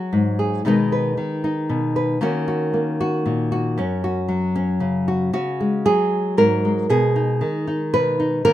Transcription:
0.00 0.62 F#3 medium
0.00 0.62 F#4 soft
0.00 0.38 G#4 soft
0.13 0.62 G#2 medium
0.39 0.62 G#4 soft
0.65 1.17 B2 medium
0.65 1.16 D#3 soft
0.65 2.21 G#3 medium
0.65 1.44 D#4 medium
0.65 0.91 B4 medium
0.92 1.95 B4 soft
1.17 2.20 D#3 medium
1.44 2.18 D#4 soft
1.69 2.18 B2 medium
1.96 2.18 B4 medium
2.21 3.76 D#3 medium
2.21 2.73 A#3 soft
2.21 3.78 C#4 medium
2.21 2.47 F#4 medium
2.48 3.00 F#4 soft
2.74 3.74 A#3 medium
3.01 3.51 F#4 medium
3.26 3.77 A#2 medium
3.52 4.04 F#4 medium
3.78 5.31 F#2 medium
3.78 4.54 C#4 medium
4.04 5.07 F#4 soft
4.28 5.30 F#3 medium
4.56 5.31 C#4 medium
4.80 5.30 C#3 soft
5.08 5.30 F#4 medium
5.33 5.85 C#3 medium
5.33 6.38 F#4 medium
5.60 6.64 G#3 soft
5.85 6.86 F#3 medium
5.85 6.37 G#4 medium
6.37 6.86 G#2 medium
6.37 6.90 A#4 medium
6.65 8.45 G#3 soft
6.89 7.41 B2 medium
6.89 7.93 G#4 medium
7.16 7.67 D#4 soft
7.41 8.44 D#3 medium
7.67 8.18 D#4 soft
7.94 8.42 B2 medium
7.94 8.44 B4 medium
8.20 8.42 D#4 soft
8.45 8.53 D#3 medium
8.45 8.53 A#3 soft
8.45 8.53 C#4 soft
8.45 8.53 A#4 loud

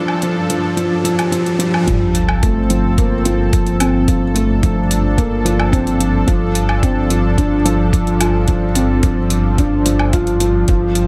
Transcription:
0.00 1.83 G2 medium
0.00 0.23 F3 medium
0.00 1.83 F3 medium
0.00 1.83 D4 medium
0.00 1.83 A4 loud
0.00 riser medium
0.08 low woodblock medium
0.22 0.48 F3 medium
0.22 closed hi-hat soft
0.50 0.75 F3 medium
0.50 closed hi-hat medium
0.77 1.02 F3 medium
0.77 closed hi-hat soft
0.77 swell medium
1.04 1.30 F3 medium
1.04 closed hi-hat medium
1.19 closed hi-hat soft
1.19 low woodblock medium
1.32 1.57 F3 medium
1.32 closed hi-hat soft
1.46 closed hi-hat soft
1.59 1.85 F3 medium
1.59 closed hi-hat medium
1.74 low woodblock medium
1.87 6.25 G1 medium
1.87 2.14 F3 loud
1.87 11.07 F3 medium
1.87 4.06 C4 medium
1.87 11.07 A4 medium
1.87 kick loud
1.87 closed hi-hat soft
1.87 sub drop medium
2.15 closed hi-hat medium
2.29 low woodblock medium
2.43 2.58 A3 medium
2.43 kick loud
2.43 closed hi-hat soft
2.70 2.96 F3 medium
2.70 closed hi-hat medium
2.98 3.14 A#3 medium
2.98 kick loud
2.98 closed hi-hat soft
3.25 3.51 F3 loud
3.25 closed hi-hat medium
3.53 kick loud
3.53 closed hi-hat soft
3.66 closed hi-hat soft
3.80 4.06 C4 medium
3.80 closed hi-hat medium
3.80 low woodblock medium
4.08 4.24 F3 medium
4.08 10.64 D4 medium
4.08 kick loud
4.08 closed hi-hat soft
4.35 4.61 A3 medium
4.35 closed hi-hat medium
4.63 4.79 F3 medium
4.63 kick loud
4.63 closed hi-hat soft
4.91 closed hi-hat medium
5.18 5.44 A#3 medium
5.18 kick loud
5.18 closed hi-hat soft
5.45 5.71 F3 loud
5.45 closed hi-hat medium
5.60 low woodblock medium
5.72 5.88 C4 loud
5.72 kick loud
5.72 closed hi-hat soft
5.87 closed hi-hat soft
6.00 6.26 F3 medium
6.00 closed hi-hat medium
6.27 10.66 G1 loud
6.27 6.54 F3 loud
6.27 kick loud
6.27 closed hi-hat soft
6.55 closed hi-hat medium
6.69 low woodblock medium
6.83 6.99 C4 medium
6.83 kick loud
6.83 closed hi-hat soft
7.10 7.36 F3 medium
7.10 closed hi-hat medium
7.38 7.53 D4 medium
7.38 kick loud
7.38 closed hi-hat soft
7.65 7.92 F3 loud
7.65 closed hi-hat medium
7.93 kick loud
7.93 closed hi-hat soft
8.07 closed hi-hat soft
8.20 8.47 F4 medium
8.20 closed hi-hat medium
8.20 low woodblock medium
8.48 8.64 F3 medium
8.48 kick loud
8.48 closed hi-hat soft
8.75 9.02 C4 medium
8.75 closed hi-hat medium
9.03 9.19 F3 medium
9.03 kick loud
9.03 closed hi-hat soft
9.30 closed hi-hat medium
9.58 9.85 D4 medium
9.58 kick loud
9.58 closed hi-hat soft
9.86 10.12 F3 medium
9.86 closed hi-hat medium
9.99 low woodblock medium
10.13 10.39 F4 loud
10.13 kick loud
10.13 closed hi-hat soft
10.27 closed hi-hat soft
10.40 10.67 F3 medium
10.40 closed hi-hat medium
10.68 11.07 G1 medium
10.68 10.95 F3 loud
10.68 11.07 C4 medium
10.68 kick loud
10.68 closed hi-hat soft
10.95 closed hi-hat medium

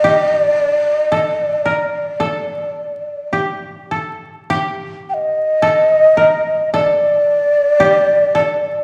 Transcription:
0.00 1.11 A4 medium
0.00 0.33 D#5 medium
0.04 2.08 G4 medium
0.33 1.00 D5 medium
1.00 1.40 D#5 medium
1.12 1.72 A4 medium
1.40 3.33 D5 medium
1.66 2.26 A#4 medium
2.20 3.91 A4 soft
3.33 4.50 G4 soft
3.91 5.62 A4 soft
4.50 6.54 G4 medium
5.09 5.15 G5 medium
5.14 6.70 D#5 medium
5.62 6.23 A4 medium
6.17 6.80 A#4 medium
6.73 8.34 A4 medium
6.73 8.84 D5 medium
7.80 8.84 G4 medium
8.35 8.84 A4 medium

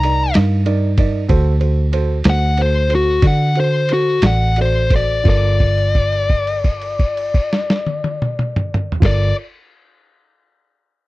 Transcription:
0.00 0.32 C2 medium
0.00 0.27 D#4 medium
0.00 0.36 A#5 loud
0.00 ride medium
0.05 0.28 A#4 medium
0.05 0.28 D5 medium
0.34 1.26 G2 medium
0.34 0.59 D#4 medium
0.34 0.59 A#4 medium
0.34 0.59 F5 medium
0.34 snare loud
0.34 ride medium
0.66 0.90 D#4 medium
0.66 0.90 A#4 medium
0.66 0.90 D5 medium
0.66 ride medium
0.98 1.21 D#4 medium
0.98 1.22 A#4 medium
0.98 1.22 D5 medium
0.98 kick medium
0.98 ride medium
1.29 2.21 D2 loud
1.29 1.53 F#4 medium
1.29 1.53 A4 medium
1.29 1.53 C5 medium
1.29 kick loud
1.29 ride medium
1.60 1.84 F#4 medium
1.60 1.85 A4 medium
1.60 1.85 C5 medium
1.60 ride medium
1.92 2.16 F#4 medium
1.92 2.17 A4 medium
1.92 2.17 C5 medium
1.92 ride medium
2.24 3.19 D2 loud
2.24 2.49 F#4 medium
2.24 2.49 A4 medium
2.24 2.50 C5 medium
2.24 snare loud
2.24 ride medium
2.30 2.59 F#5 loud
2.57 2.82 F#4 medium
2.57 2.82 A4 medium
2.57 2.82 C5 medium
2.57 ride medium
2.62 2.91 C5 medium
2.89 3.14 F#4 medium
2.89 3.14 A4 medium
2.89 3.14 C5 medium
2.89 ride medium
2.95 3.24 F#4 medium
3.22 4.18 D3 medium
3.22 3.47 F#4 medium
3.22 3.47 A4 soft
3.22 3.47 D5 medium
3.22 kick loud
3.22 snare soft
3.22 ride medium
3.27 3.57 F#5 medium
3.55 3.80 F#4 medium
3.55 3.81 A4 medium
3.55 3.81 C5 medium
3.55 ride medium
3.60 3.90 C5 medium
3.89 4.14 F#4 medium
3.89 4.15 A4 soft
3.89 4.15 C5 medium
3.89 ride medium
3.93 4.24 F#4 medium
4.22 5.21 A1 medium
4.22 4.48 F#4 soft
4.22 4.48 A4 soft
4.22 4.48 D5 medium
4.22 snare loud
4.22 ride medium
4.27 4.57 F#5 medium
4.56 4.82 F#4 medium
4.56 4.82 A4 soft
4.56 4.83 D5 medium
4.56 ride medium
4.62 4.92 C5 medium
4.90 5.17 F#4 medium
4.90 5.17 A4 soft
4.90 5.17 C5 medium
4.90 kick medium
4.90 ride medium
4.96 5.27 D5 medium
5.24 8.90 G1 medium
5.24 8.89 F4 medium
5.24 8.90 A4 medium
5.24 kick loud
5.24 crash medium
5.28 8.91 A#4 medium
5.28 8.92 D5 loud
5.60 kick medium
5.60 crash soft
5.78 crash soft
5.95 kick medium
5.95 crash soft
6.12 crash soft
6.29 kick medium
6.29 crash soft
6.47 crash medium
6.64 kick medium
6.64 crash medium
6.81 crash medium
6.99 kick medium
6.99 crash soft
7.17 crash medium
7.34 kick medium
7.34 crash medium
7.53 snare medium
7.70 snare medium
7.87 high tom medium
8.04 high tom medium
8.22 mid tom medium
8.39 mid tom medium
8.56 mid tom loud
8.74 mid tom loud
8.92 floor tom medium
9.00 9.31 G1 medium
9.00 9.30 F4 medium
9.00 9.31 A4 medium
9.00 9.32 A#4 medium
9.00 kick loud
9.00 snare loud
9.00 crash loud
9.06 9.35 D5 loud

